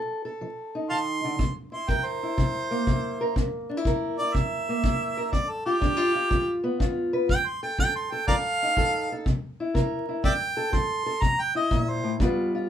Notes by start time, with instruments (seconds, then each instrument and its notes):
Already playing: steel-string acoustic guitar F3 A4
0.25 steel-string acoustic guitar A4
0.41 steel-string acoustic guitar F3
0.75 steel-string acoustic guitar D#4
0.90 steel-string acoustic guitar D#3, harmonica F5 A5 C6
1.24 steel-string acoustic guitar D3
1.39 steel-string acoustic guitar C3, kick
1.72 steel-string acoustic guitar E4, harmonica C6
1.88 steel-string acoustic guitar C3 A#4, harmonica G5, kick
2.05 harmonica C5
2.23 steel-string acoustic guitar E4
2.37 steel-string acoustic guitar C3, kick
2.71 steel-string acoustic guitar A#3
2.87 steel-string acoustic guitar C3 E4, kick
3.21 steel-string acoustic guitar A#4
3.36 steel-string acoustic guitar C3, kick
3.69 steel-string acoustic guitar D4
3.77 steel-string acoustic guitar E4
3.85 steel-string acoustic guitar C3 A#4, kick
4.18 steel-string acoustic guitar E4, harmonica D5
4.34 steel-string acoustic guitar C3, harmonica E5, kick
4.69 steel-string acoustic guitar A#3
4.84 steel-string acoustic guitar C3 E4, kick
5.17 steel-string acoustic guitar A#4
5.32 steel-string acoustic guitar G2, harmonica D5, kick
5.49 harmonica A4
5.66 steel-string acoustic guitar F4, harmonica G4
5.81 steel-string acoustic guitar G2 D4, kick
5.97 steel-string acoustic guitar F4
6.15 steel-string acoustic guitar F4
6.30 steel-string acoustic guitar G2, kick
6.64 steel-string acoustic guitar B3
6.80 steel-string acoustic guitar G2 F4, kick
7.13 steel-string acoustic guitar B4
7.29 steel-string acoustic guitar F3, harmonica G5, kick
7.47 harmonica C6
7.63 steel-string acoustic guitar A4, harmonica G5
7.79 steel-string acoustic guitar F3 A4, harmonica G5, kick
7.96 harmonica C6
8.12 steel-string acoustic guitar A4, harmonica G5
8.28 steel-string acoustic guitar F3, harmonica A#4 D5 F5, kick
8.63 steel-string acoustic guitar D#4
8.77 steel-string acoustic guitar F3 A4, kick
9.12 steel-string acoustic guitar A4
9.26 steel-string acoustic guitar C3, kick
9.60 steel-string acoustic guitar E4
9.74 steel-string acoustic guitar C3 A#4, kick
10.09 steel-string acoustic guitar E4
10.24 steel-string acoustic guitar F3, harmonica D5 E5 G5, kick
10.57 steel-string acoustic guitar A4
10.72 steel-string acoustic guitar F3 A4, harmonica C6, kick
11.06 steel-string acoustic guitar A4
11.21 steel-string acoustic guitar C3, harmonica A#5, kick
11.40 harmonica G5
11.55 steel-string acoustic guitar E4, harmonica D#5
11.71 steel-string acoustic guitar A#2, kick
11.89 harmonica C5
12.04 steel-string acoustic guitar A2
12.20 steel-string acoustic guitar G2 G3 B3 F4 B4, kick
12.55 steel-string acoustic guitar F4